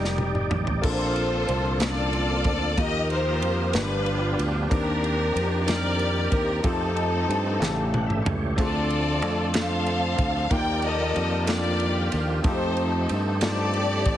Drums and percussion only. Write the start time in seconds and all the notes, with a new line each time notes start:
0.05 snare
0.18 high tom
0.35 mid tom
0.51 mid tom
0.67 floor tom
0.83 kick, crash
1.16 ride
1.49 ride
1.80 snare, clap, ride
2.13 ride
2.44 kick, ride
2.78 kick, ride
3.10 ride
3.42 ride
3.73 snare, clap, ride
4.06 ride
4.39 ride
4.71 kick, ride
5.04 ride
5.37 ride
5.68 snare, clap, ride
5.99 ride
6.32 kick, ride
6.64 kick, ride
6.97 ride
7.30 ride
7.62 snare, clap
7.94 high tom
8.10 mid tom
8.26 mid tom
8.58 kick, ride
8.90 ride
9.22 ride
9.54 snare, clap, ride
9.86 ride
10.18 kick, ride
10.51 kick, ride
10.82 ride
11.16 ride
11.47 snare, clap, ride
11.80 ride
12.12 ride
12.44 kick, ride
12.77 ride
13.09 ride
13.41 snare, clap, ride
13.74 ride
14.05 kick, ride